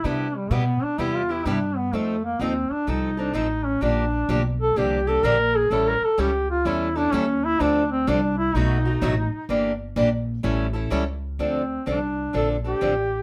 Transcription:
X:1
M:4/4
L:1/8
Q:"Swing" 1/4=127
K:Dm
V:1 name="Duduk"
D G, =B, D (3E F E D B, | A, B, C D _E D E ^C | D3 A G A B ^G | (3A B A G F E D ^C E |
D C D E ^D4 | z8 | C2 D2 A G3 |]
V:2 name="Steel-string acoustic guitar"
[C,G,=B,EG] z [C,G,B,EG] z [C,G,B,EG] [B,EG] [C,G,B,EG] z | [F,C_EA] z [F,CEA] z [F,CEA] [CEA] [F,CEA] z | [D,F,B,DG] z [D,F,B,DG] z [D,F,B,DG] [B,DG] [D,F,B,DG] z | [E,G,^CEA] z [E,G,CEA] z [E,G,CEA] [CEA] [E,G,CEA] z |
[D,F,CDA] z [D,F,CDA] z [=B,,^F,A,^D^F] [A,DF] [B,,F,A,DF] z | [E,B,DG] z [E,B,DG] z [E,G,^CEA] [CEA] [E,G,CEA] z | [D,F,CDA] z [D,F,CDA] z [D,F,CDA] [CDA] [D,F,CDA] z |]
V:3 name="Upright bass" clef=bass
C,2 =B,, z E,,2 G,,2 | F,,2 _E,, z C,,2 A,,,2 | B,,,2 =B,,,2 C,,2 _B,,,2 | A,,, z ^C,,2 E,,2 _E,,2 |
D,,2 C,,2 =B,,,2 A,,, z | G,,,2 B,,,2 A,,,2 ^C,,2 | D,,2 C,,2 B,,,2 A,,,2 |]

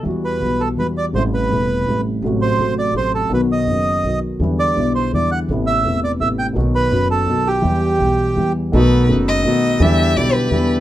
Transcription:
X:1
M:3/4
L:1/8
Q:1/4=167
K:Em
V:1 name="Violin"
z6 | z6 | z6 | z6 |
z6 | z6 | z6 | z6 |
B2 z ^d3 | e2 d B2 z |]
V:2 name="Bandoneon"
z B2 A B d | c B4 z | z c2 d c A | B ^d4 z |
z d2 c d f | z e2 d e g | z B2 A2 G- | G4- G z |
z6 | z6 |]
V:3 name="Bandoneon"
z6 | z6 | z6 | z6 |
z6 | z6 | z6 | z6 |
[B,^DA]2 [B,DA]2 [B,DA]2 | [DEG]2 [DEG]2 [DEG]2 |]
V:4 name="Grand piano" clef=bass
[E,,E,G,B,F]2 [B,,,B,,E,G,B,F]2 [E,,E,G,B,F]2 | [A,,,A,,C,G,A,E]2 [E,,,E,,C,G,A,E]2 [A,,,A,,C,G,A,E]2 | [A,,,A,,C,F,A,F]2 [A,,,A,,C,F,A,F]2 [A,,,A,,C,F,A,F]2 | [B,,,B,,^D,F,B,F]2 [F,,,F,,D,F,B,F]2 [B,,,B,,D,F,B,F]2 |
[E,,D,E,G,B,E]2 [B,,,B,,D,G,B,E]2 [E,,D,E,G,B,E]2 | [A,,,A,,C,A,B,E]2 [E,,,E,,C,A,B,E]2 [A,,,A,,C,A,B,E]2 | [B,,,B,,^D,F,B,F]2 [F,,,F,,D,F,B,F]2 [B,,,B,,D,F,B,F]2 | [E,,E,G,B,G]2 [B,,,B,,E,G,B,]2 [E,,E,G,B,G]2 |
[B,,,B,,^D,A,B,F]2 [F,,,F,,D,A,B,F]2 [B,,,B,,D,A,B,F]2 | [E,,D,E,G,B,E]2 [B,,,B,,D,G,B,E]2 [E,,D,E,G,B,E]2 |]
V:5 name="Upright bass" clef=bass
E,,2 B,,,2 E,,2 | A,,,2 E,,,2 A,,,2 | A,,,2 A,,,2 A,,,2 | B,,,2 F,,,2 B,,,2 |
E,,2 B,,,2 E,,2 | A,,,2 E,,,2 A,,,2 | B,,,2 F,,,2 B,,,2 | E,,2 B,,,2 E,,2 |
B,,,2 F,,,2 B,,,2 | E,,2 B,,,2 E,,2 |]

